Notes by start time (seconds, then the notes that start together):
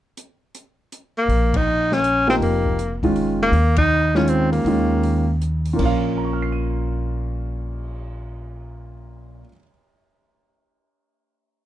0.17 closed hi-hat
0.55 closed hi-hat
0.92 closed hi-hat
1.18 A#3
1.28 A#1, open hi-hat
1.54 D#4, kick, ride
1.92 C#4, snare
2.04 closed hi-hat
2.27 F3 A#3 C4 D#4 G4, snare
2.40 F1 A#3, open hi-hat
2.66 kick
2.79 closed hi-hat
3.03 D#3 G#3 C#4 F4, kick, open hi-hat
3.16 open hi-hat
3.42 A#3
3.52 D#2, open hi-hat
3.76 D#4, kick, ride
4.15 D#3 G#3 C#4 F4, snare
4.28 C4, closed hi-hat
4.52 A#3, open hi-hat
4.65 D#2 D#3 G#3 C#4 F4, open hi-hat
5.03 open hi-hat
5.42 closed hi-hat
5.65 open hi-hat
5.73 A#2 A#3
5.79 A#1 C#4 F4, kick, crash
5.85 F5
6.04 cymbal swell
6.18 A#5
6.25 C#6
6.33 F6
6.42 C7
6.52 D#7